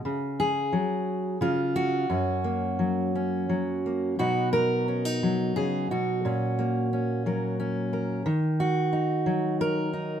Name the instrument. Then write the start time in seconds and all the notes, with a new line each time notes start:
steel-string acoustic guitar
0.05 C#3
0.40 G#4
0.73 F#3
1.41 C#3 F4
1.76 F#4
2.10 F#2 C#4
2.44 A#3
2.79 F#3
3.15 C#4
3.49 F#3
3.86 A#3
4.19 B2 F#3 B3 D#4 F#4
4.53 A#4
4.88 C#4
5.05 D#4
5.23 F#3
5.56 C#3 G#4
5.91 B2 F#4
6.25 A#2 C#4
6.59 A#3
6.93 C#4
7.26 F#3 A#4
7.60 C#4
7.93 A#4
8.26 D#3
8.60 F#4
8.93 D#4
9.26 F#3
9.61 A#4
9.93 D#4